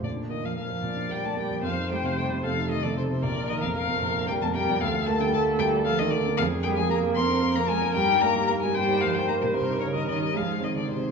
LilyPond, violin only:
\new Staff \with { instrumentName = "Violin" } { \time 6/8 \key bes \major \tempo 4. = 76 d''8 ees''16 f''16 f''4 g''16 a''16 g''8 | f''8 g''16 f''16 g''8 f''8 ees''16 d''16 c''16 c''16 | d''8 ees''16 f''16 f''4 g''16 a''16 g''8 | f''8 a''16 g''16 a''8 g''8 f''16 ees''16 d''16 r16 |
\key ees \major f''8 g''16 aes''16 bes''8 c'''8. bes''16 aes''8 | g''8 bes''8 bes''16 aes''16 g''8 f''16 g''16 bes''16 bes'16 | c''8 des''16 ees''16 ees''8 f''8 ees''16 d''16 c''8 | }